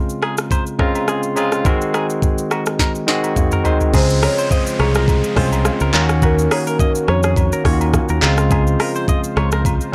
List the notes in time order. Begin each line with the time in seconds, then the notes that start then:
Already playing: C#3 G#3 C4 F4
0.09 shaker
0.22 G#4, cross-stick, high agogo
0.37 cross-stick, shaker
0.51 C5, kick, high agogo, shaker
0.67 shaker
0.78 C#3 G#3 C4 F4 A#4, kick, cross-stick
0.95 high agogo, shaker
1.08 G#4, cross-stick, low woodblock, shaker
1.23 shaker
1.35 C#3 G#3 C4 F4 G#4, high agogo, shaker
1.52 cross-stick, shaker
1.64 D#3 G#3 C4 F#4 A#4, kick, high agogo, shaker
1.81 shaker
1.94 G#4, cross-stick, high agogo, shaker
2.10 shaker
2.22 kick, shaker
2.38 shaker
2.51 F#4, cross-stick, high agogo, shaker
2.66 cross-stick, shaker
2.79 A#4, kick, snare, high agogo, shaker
2.95 shaker
3.07 D#3 G#3 C4 F#4 G#4, snare, shaker
3.24 high agogo, shaker
3.36 kick, mid tom, low woodblock, shaker
3.52 A#4, mid tom, shaker
3.64 D#3 G#3 C4 D#4 C5, floor tom, high agogo, shaker
3.81 floor tom, shaker
3.92 C#2 C#3 F3 G#3 C4 F4 G#4 C5, kick, downlifter, high agogo, shaker
4.10 shaker
4.22 A#4 C#5, cross-stick, open hi-hat, high agogo, shaker
4.38 C5, shaker
4.51 C5 D#5, kick, low woodblock, shaker
4.67 shaker
4.79 C2 G#4 C#5, cross-stick, high agogo
4.95 A#4, cross-stick, shaker
5.08 kick, high agogo, shaker
5.24 shaker
5.35 C2 G#3 C4 C#4 F4 C5, kick, cross-stick, open hi-hat
5.52 high agogo, shaker
5.65 cross-stick, low woodblock, shaker
5.80 C#2 A#4, shaker
5.92 D#2 D#3 A#3 C#4 F4 F#4 A#4, clap, high agogo, shaker
6.01 F#4
6.09 cross-stick, shaker
6.22 F#4 A#4, kick, high agogo, shaker
6.39 shaker
6.51 G#4 C#5, cross-stick, open hi-hat, high agogo, shaker
6.67 A#4, shaker
6.79 D#5, kick, low woodblock, shaker
6.95 shaker
7.08 F2 C#5, cross-stick, high agogo
7.23 G#4, cross-stick, shaker
7.36 C#5, kick, high agogo, shaker
7.52 A#4, shaker
7.64 D#2 D#3 A#3 C#4 F4 C#5, kick, cross-stick, open hi-hat
7.73 F#4
7.81 high agogo, shaker
7.93 kick, cross-stick, low woodblock, shaker
8.09 D#2 A#4, shaker
8.21 C#2 C#3 F3 G#3 C4 F4 C5, clap, high agogo, shaker
8.38 cross-stick, shaker
8.51 G#4, kick, high agogo, shaker
8.67 shaker
8.80 A#4, cross-stick, open hi-hat, high agogo, shaker
8.95 C5, shaker
9.08 D#5, kick, low woodblock, shaker
9.24 shaker
9.37 C#2 C#5, cross-stick, high agogo
9.52 A#4, cross-stick, shaker
9.65 kick, high agogo, shaker
9.81 shaker